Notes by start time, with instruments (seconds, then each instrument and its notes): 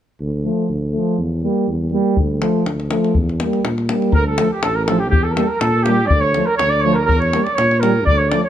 0.20 tuba D2
0.44 euphonium F3 A3
0.69 tuba D2
0.92 euphonium F3 A3
1.18 tuba E2
1.43 euphonium G3 A#3
1.68 tuba E2
1.92 euphonium G3 A#3
2.17 tuba D2, davul low
2.40 euphonium F3 A3, davul high
2.66 tuba D2, davul high
2.80 davul high
2.90 euphonium F3 A3, davul high
3.04 davul high
3.15 tuba E2, davul low
3.29 davul high
3.40 euphonium G3 A#3, davul high
3.53 davul high
3.64 tuba A#2, davul high
3.78 davul high
3.89 euphonium G3 A#3, davul high
4.02 davul high
4.13 tuba D2, trumpet A#4, flugelhorn A#4, davul low
4.27 flugelhorn A4, trumpet A4
4.38 euphonium F3 A3, davul high
4.51 trumpet G4, flugelhorn G4
4.62 tuba A1, trumpet A4, flugelhorn A4, davul high
4.75 trumpet A#4, flugelhorn A#4
4.83 flugelhorn A4 A#4, trumpet A4 A#4
4.88 euphonium F3 A3, davul high
4.99 flugelhorn G4, trumpet G4
5.10 tuba E2, trumpet G4, flugelhorn G4, davul low
5.23 flugelhorn A4, trumpet A4
5.31 flugelhorn A#4, trumpet A#4
5.36 euphonium G3 A#3, trumpet A4, flugelhorn A4, davul high
5.48 flugelhorn A#4, trumpet A#4
5.59 tuba A#2, flugelhorn A4, trumpet A4, davul high
5.83 euphonium A#3, flugelhorn G4, trumpet G4, davul high
5.88 euphonium G3
6.06 flugelhorn D5, trumpet D5
6.10 tuba D2, davul low
6.20 flugelhorn C#5, trumpet C#5
6.34 euphonium F3 A3, davul high
6.46 flugelhorn A#4, trumpet A#4
6.56 flugelhorn C#5, trumpet C#5, davul high
6.60 tuba D2
6.69 flugelhorn D5, trumpet D5
6.80 euphonium A3, flugelhorn C#5
6.84 euphonium F3, trumpet C#5
6.93 flugelhorn A#4, trumpet A#4
7.05 flugelhorn A#4, trumpet A#4
7.09 tuba E2, davul low
7.19 flugelhorn C#5, trumpet C#5, davul high
7.33 euphonium G3 A#3, davul high
7.44 flugelhorn D5, trumpet D5, davul high
7.54 flugelhorn C#5, trumpet C#5, davul high
7.59 tuba A#2
7.71 davul high
7.80 euphonium G3 A#3, trumpet A#4, flugelhorn A#4, davul high
8.05 tuba D2, flugelhorn D5, trumpet D5, davul low
8.17 flugelhorn C#5, trumpet C#5
8.29 euphonium A3, flugelhorn D5, trumpet D5, davul high
8.33 euphonium F3
8.44 flugelhorn C#5, trumpet C#5